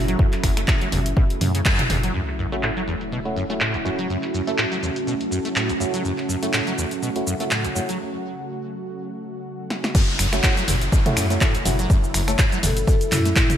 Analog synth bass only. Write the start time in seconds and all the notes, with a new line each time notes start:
Already playing: F#1
0.44 F#1
0.92 F#1
1.41 F#2
1.90 F#1
10.19 F#1
10.68 F#1
11.17 F#2
11.66 F#1
12.14 F#1
12.63 F#1
13.12 F#2